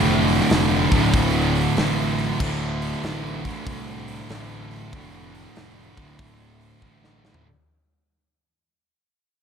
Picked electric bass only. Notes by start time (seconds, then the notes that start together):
Already playing: F1
0.51 F1
0.91 D1
1.14 D1
1.77 A1
2.40 D1
3.04 A1
3.66 C2
4.30 A1
4.93 F1
5.57 F1
5.97 D1
6.19 D1
6.82 A1